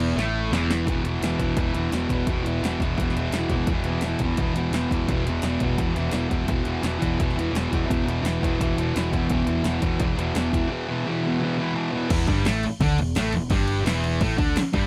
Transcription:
Already playing: E1 E2 E3
0.00 crash
0.15 A1 A2 A3, snare
0.51 E1 E2 E3, snare
0.70 snare
0.86 E1 E2 B2, kick, closed hi-hat
0.90 E3
1.03 E1 E3, closed hi-hat
1.08 B2
1.21 E1 E2 B2, snare, closed hi-hat
1.26 E3
1.39 E1 E2 B2 E3, kick, closed hi-hat
1.57 E1 E2 B2 E3, kick, closed hi-hat
1.74 E1 B2 E3, closed hi-hat
1.78 E2
1.91 E1 E2 B2, snare, closed hi-hat
1.95 E3
2.09 E1 E3, kick, closed hi-hat
2.14 B2
2.27 E1 E2 B2, kick, closed hi-hat
2.32 E3
2.43 E1 E3, closed hi-hat
2.48 B2
2.61 E1 E2 B2 E3, snare, closed hi-hat
2.80 E1 B2 E3, kick, closed hi-hat
2.85 E2
2.98 E1 E2, kick, closed hi-hat
3.02 B2 E3
3.10 snare
3.15 E1 B2 E3, closed hi-hat
3.20 E2
3.31 E1 E2, snare, closed hi-hat
3.37 B2 E3
3.50 E1 E3, kick, closed hi-hat
3.56 B2
3.67 E1 E2, kick, closed hi-hat
3.72 B2 E3
3.83 E1 E3, closed hi-hat
3.91 B2
4.00 E1 E2, snare, closed hi-hat
4.07 B2 E3
4.19 E1 E3, kick, closed hi-hat
4.24 E2 B2
4.37 E1 E2 B2 E3, kick, closed hi-hat
4.54 E1 B2 E3, closed hi-hat
4.59 E2
4.71 E1 E2 B2, snare, closed hi-hat
4.77 E3
4.91 E1 B2 E3, kick, closed hi-hat
5.08 E1 E2 B2, kick, closed hi-hat
5.12 E3
5.25 E1 E3, closed hi-hat
5.30 B2
5.42 E1 E2, snare, closed hi-hat
5.47 B2 E3
5.60 E1 E3, kick, closed hi-hat
5.64 E2 B2
5.77 E1 E2 B2, kick, closed hi-hat
5.82 E3
5.96 E1 E2 B2 E3, snare, closed hi-hat
6.11 E1 E2 B2, snare, closed hi-hat
6.15 E3
6.29 E1 E3, kick, closed hi-hat
6.34 B2
6.46 E1 E2 B2, kick, closed hi-hat
6.50 E3
6.64 E1 E3, closed hi-hat
6.68 B2
6.83 E1 E2 B2, snare, closed hi-hat
6.87 E3
6.99 E1 B2 E3, kick, closed hi-hat
7.03 E2
7.18 E1 E2 B2 E3, kick, closed hi-hat
7.30 snare
7.36 E1 B2 E3, closed hi-hat
7.41 E2
7.53 E1 E2 B2, snare, closed hi-hat
7.57 E3
7.71 E1 E3, kick, closed hi-hat
7.75 B2
7.86 E2 B2
7.90 E1 E3, kick, closed hi-hat
8.06 E1 E3, closed hi-hat
8.10 B2
8.23 E1 E2 B2 E3, snare, closed hi-hat
8.41 E1 E2 B2 E3, kick, closed hi-hat
8.59 E1 E2 B2, kick, closed hi-hat
8.63 E3
8.77 E1 B2 E3, closed hi-hat
8.81 E2
8.95 E1 E2 B2, snare, closed hi-hat
9.00 E3
9.12 E1 E3, kick, closed hi-hat
9.17 B2
9.28 E1 E2 B2, kick, closed hi-hat
9.33 E3
9.45 E1 E3, closed hi-hat
9.50 B2
9.64 E1 E2 B2, snare, closed hi-hat
9.68 E3
9.80 E1 E2 B2 E3, kick, closed hi-hat
10.00 E1 E2 B2, kick, closed hi-hat
10.04 E3
10.17 E1 B2 E3, closed hi-hat
10.21 E2
10.35 E1 E2 B2 E3, snare, closed hi-hat
10.52 E1 E3, kick, closed hi-hat
10.56 B2
10.69 E2 B2 E3
10.88 B2 E3
11.05 E2 B2
11.10 E3
11.24 B2 E3
11.28 E2
11.41 E2 B2
11.45 E3
11.58 B2 E3
11.62 E2
11.74 E2 B2 E3
11.91 E3
11.96 B2
12.09 E1 E2 E3, kick, crash
12.27 G1 G2 G3, kick, crash
12.45 A1 A2 A3, snare, crash
12.63 muted distorted electric guitar stroke, muted picked electric bass stroke, crash
12.80 D2 D3 D4, kick, crash
12.98 E1 E2, crash
13.15 A1 A2 A3, snare, crash
13.33 E1 E2, crash
13.50 G1 G2 G3, kick, crash
13.68 crash
13.85 E1 E2 E3, snare, crash
14.04 crash
14.21 A1 A2 A3, kick, crash
14.37 D2 D3 D4, kick, crash
14.56 muted distorted electric guitar stroke, muted picked electric bass stroke, snare, crash
14.73 G1 G2 G3, kick, crash

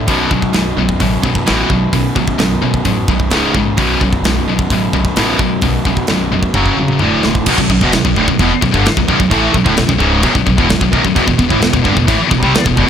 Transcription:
0.08 B1 F#2 B2, kick, open hi-hat
0.31 B1 F#2 B2, kick
0.42 kick
0.53 B1 F#2 B2, snare, open hi-hat
0.77 B1 F#2 B2
0.89 kick
1.00 A1 B1 F#2 B2, kick, open hi-hat
1.23 B1 F#2 B2, kick
1.35 kick
1.45 A1 B1 F#2 B2, snare, open hi-hat
1.70 B1 F#2 B2, kick
1.93 B1 F#2 B2, kick, open hi-hat
2.16 B1 F#2 B2, kick
2.28 kick
2.38 B1 F#2 B2, snare, open hi-hat
2.62 B1 F#2 B2
2.74 kick
2.85 A1 B1 F#2 B2, kick, open hi-hat
3.08 B1 F#2 B2, kick
3.20 kick
3.30 C#1 C#2 G#2 C#3, snare, open hi-hat
3.55 A#1 C#2 G#2 C#3, kick
3.77 B1 F#2 B2, kick, open hi-hat
4.01 B1 F#2 B2, kick
4.13 kick
4.22 B1 F#2 B2, snare, open hi-hat
4.46 B1 F#2 B2
4.59 kick
4.70 A1 B1 F#2 B2, kick, open hi-hat
4.93 B1 F#2 B2, kick
5.05 kick
5.16 A1 B1 F#2 B2, snare, open hi-hat
5.39 B1 F#2 B2, kick
5.62 B1 F#2 B2, kick, open hi-hat
5.85 B1 F#2 B2, kick
5.97 kick
6.07 B1 F#2 B2, snare, open hi-hat
6.31 F1 B1 F#2 B2
6.43 kick
6.54 F#1 F#2 C#3 F#3, kick
6.66 kick
6.77 E1 F#2 C#3 F#3
6.88 mid tom
6.99 D1 D2 A2 D3, mid tom
7.23 D1 D2 A2 D3, snare
7.35 kick
7.46 B1 F#2, kick, crash
7.58 B1 F#2, kick
7.70 B1 F#2, kick
7.81 E1 E2 B2, kick
7.92 B1 F#2, snare, crash
8.05 B1 F#2, kick
8.16 D1 D2 A2, kick
8.28 B1 F#2, kick
8.39 E1 E2 B2, kick, crash
8.51 muted distorted electric guitar stroke, muted upright bass stroke, muted overdriven electric guitar stroke
8.62 B1 F#2, kick
8.74 G1 G2 D3, kick
8.85 muted distorted electric guitar stroke, muted overdriven electric guitar stroke, muted upright bass stroke, snare, crash
8.97 B1 F#2, kick
9.07 B1 F#2, kick
9.19 B1 F#2, kick
9.30 A1 A2 E3 A3, kick, crash
9.54 B1 F#2, kick
9.66 D1 D2 A2, kick
9.77 B1 F#2, snare, crash
9.87 B1 F#2, kick
10.00 C#1 C#2 G#2 C#3, kick
10.21 B1 F#2, kick, crash
10.33 B1 F#2, kick
10.45 B1 F#2, kick
10.56 E1 E2 B2, kick
10.69 B1 F#2, snare, crash
10.80 B1 F#2, kick
10.92 B1 F#2, kick
11.03 B1 F#2, kick
11.15 E1 E2 B2, kick, crash
11.25 E1 E2 B2, kick
11.37 E1 E2 B2, kick
11.49 A1 A2 E3, kick
11.59 E1 E2 B2, snare, crash
11.71 E1 E2 B2, kick
11.82 G1 G2 D3, kick
11.93 E2 B2, kick
11.97 E1 E2 B2
12.05 A1 A2 E3, kick, crash
12.16 muted overdriven electric guitar stroke
12.22 muted distorted electric guitar stroke
12.27 E2 B2, kick
12.32 E1 E2 B2
12.39 C3 G3
12.43 C2 C3 G3, kick
12.50 muted overdriven electric guitar stroke, muted upright bass stroke
12.55 muted distorted electric guitar stroke, snare, crash
12.62 E2 B2
12.66 E1 E2 B2, kick
12.74 E1 E2 B2, kick

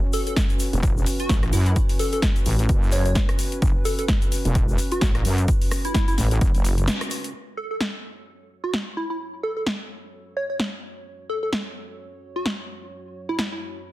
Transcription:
Already playing: C#4 F#4 B4
0.13 A4, open hi-hat, shaker
0.27 A4, closed hi-hat, shaker
0.36 kick, snare, closed hi-hat, shaker
0.49 closed hi-hat, shaker
0.60 open hi-hat, shaker
0.73 E1, closed hi-hat, shaker
0.83 kick, closed hi-hat, shaker
0.97 shaker
1.06 open hi-hat, shaker
1.19 F#4, closed hi-hat, shaker
1.29 A1, kick, snare, closed hi-hat, shaker
1.43 cross-stick, closed hi-hat
1.53 F#2 E4, open hi-hat, shaker
1.66 E4, closed hi-hat, shaker
1.76 kick, closed hi-hat, shaker
1.89 open hi-hat, shaker
1.99 A4, open hi-hat, shaker
2.13 A4, closed hi-hat, shaker
2.22 kick, snare, closed hi-hat, shaker
2.36 closed hi-hat, shaker
2.46 A1, open hi-hat, shaker
2.59 closed hi-hat, shaker
2.69 F#1, kick, closed hi-hat, shaker
2.83 shaker
2.92 C#5, open hi-hat, shaker
3.06 C#5, closed hi-hat, shaker
3.15 kick, snare, closed hi-hat, shaker
3.29 cross-stick, closed hi-hat
3.39 open hi-hat, shaker
3.52 closed hi-hat, shaker
3.62 F#1, kick, closed hi-hat, shaker
3.85 A4, open hi-hat, shaker
3.99 A4, closed hi-hat, shaker
4.08 kick, snare, closed hi-hat, shaker
4.22 closed hi-hat, shaker
4.32 open hi-hat, shaker
4.45 E1, closed hi-hat, shaker
4.55 kick, closed hi-hat, shaker
4.69 shaker
4.78 open hi-hat, shaker
4.92 F#4, closed hi-hat, shaker
5.01 A1, kick, snare, closed hi-hat, shaker
5.15 cross-stick, closed hi-hat
5.25 F#2, open hi-hat, shaker
5.38 closed hi-hat, shaker
5.48 kick, closed hi-hat, shaker
5.62 open hi-hat, shaker
5.71 cross-stick, open hi-hat, shaker
5.85 E4, closed hi-hat, shaker
5.94 E4, kick, snare, closed hi-hat, shaker
6.08 E4, closed hi-hat, shaker
6.18 A1, snare, open hi-hat, shaker
6.31 closed hi-hat, shaker
6.41 F#1, kick, closed hi-hat, shaker
6.55 F#1, closed hi-hat, shaker
6.65 open hi-hat, shaker
6.78 closed hi-hat, shaker
6.88 snare, closed hi-hat, shaker
7.01 cross-stick, closed hi-hat, shaker
7.11 open hi-hat, shaker
7.24 closed hi-hat, shaker
7.34 F#3 F#4 C#5
7.57 A4
7.71 A4
7.81 snare
8.64 F#4
8.74 snare
8.97 E4
9.10 E4
9.43 A4
9.57 A4
9.67 snare
10.37 C#5
10.50 C#5
10.60 snare
11.29 A4
11.43 A4
11.53 snare
12.36 F#4
12.46 snare
13.29 E4
13.39 E4, snare
13.52 E4

